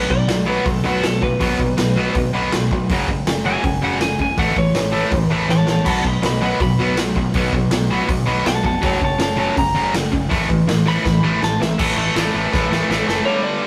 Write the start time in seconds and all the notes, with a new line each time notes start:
0.09 B1 B2 F#3 D5, kick
0.27 B1 B2 F#3, snare, open hi-hat
0.46 B2 F#3 B3 B4
0.65 B1 B2 F#3, kick, open hi-hat
0.69 A4
0.84 B1 B2 F#3 B3
0.88 F#4
1.02 B1 B2 F#3 A4, snare, open hi-hat
1.21 B1 B2 F#3 B4, kick
1.39 B1 B2 F#3 B3, kick, open hi-hat
1.59 B1 B2 F#3, kick
1.77 B1 B2 F#3, snare, open hi-hat
1.96 B2 F#3 B3
2.15 B1 B2 F#3, kick, open hi-hat
2.33 B1 B2 F#3 B3
2.52 B1 B2 F#3, snare, open hi-hat
2.71 B1 B2 F#3, kick
2.90 F#1 F#2 C#3 F#3, kick, open hi-hat
3.08 F#1 F#2 C#3, kick
3.26 F#1 F#2 C#3, snare, open hi-hat
3.44 F#2 C#3 F#3 G#5
3.64 F#1 F#2 C#3, kick, open hi-hat
3.82 F#1 F#2 C#3 F#3 F#5
4.01 F#1 F#2 C#3 G#5, snare, open hi-hat
4.19 F#1 F#2 C#3 G#5, kick
4.37 A1 A2 E3 A3 F#5, kick, open hi-hat
4.56 A1 A2 E3 C#5, kick
4.74 A1 A2 E3, snare, open hi-hat
4.92 A2 E3 A3
5.12 A1 A2 E3, kick, open hi-hat
5.30 A1 A2 E3 A3
5.48 A1 A2 E3 C#5 A5, snare
5.66 A#1 A2 E3 C#5, snare
5.71 A5
5.85 B1 B2 F#3 B3 F#5, kick, open hi-hat, crash
5.90 A5
6.03 B1 B2 F#3, kick
6.07 D#5 B5
6.22 B1 B2 F#3 D#5, snare, open hi-hat
6.26 B5
6.41 B2 F#3 B3 D#5
6.46 B5
6.60 B1 B2 F#3 B5, kick, open hi-hat
6.78 B1 B2 F#3 B3
6.97 B1 B2 F#3, snare, open hi-hat
7.15 B1 B2 F#3, kick
7.34 B1 B2 F#3 B3, kick, open hi-hat
7.53 B1 B2 F#3, kick
7.70 B1 B2 F#3, snare, open hi-hat
7.90 B2 F#3 B3
8.08 B1 B2 F#3, kick, open hi-hat
8.26 B1 B2 F#3 B3
8.45 B1 B2 F#3 F#5 A5, snare, open hi-hat
8.64 F1 B2 F#3 F#5 A5, kick
8.82 F#1 F#2 C#3 F#3 C#5, kick, open hi-hat
8.86 A5
9.01 F#1 F#2 C#3 C#5 A5, kick
9.18 F#1 F#2 C#3 C#5 A5, snare, open hi-hat
9.36 F#2 C#3 F#3 C#5
9.40 A5
9.57 F#1 F#2 C#3 A#5, kick, open hi-hat
9.74 F#1 F#2 C#3 F#3
9.94 F#1 F#2 C#3, snare, open hi-hat
10.12 F#1 F#2 C#3, kick
10.29 A1 A2 E3 A3, kick, open hi-hat
10.49 A1 A2 E3, kick
10.67 A1 A2 E3, snare, open hi-hat
10.85 A2 E3 A3 B5
11.04 A1 A2 E3, kick, snare
11.23 A1 A2 E3 A3
11.41 A1 A2 E3 A5, snare
11.60 A1 A2 E3 E5, snare
11.79 A1 A2 E3 A3, kick, crash
11.97 A1 A2 E3 A3
12.15 A1 A2 E3 A3, snare, open hi-hat
12.33 A1 A2 E3 A3
12.52 A1 A2 E3 A3, kick, snare
12.71 A1 A2 E3 A3, snare
12.89 A1 A2 E3 A3, snare
13.07 F#1 A2 E3 A3, snare
13.25 G2 D3 G3 C#5
13.44 D5
13.63 G2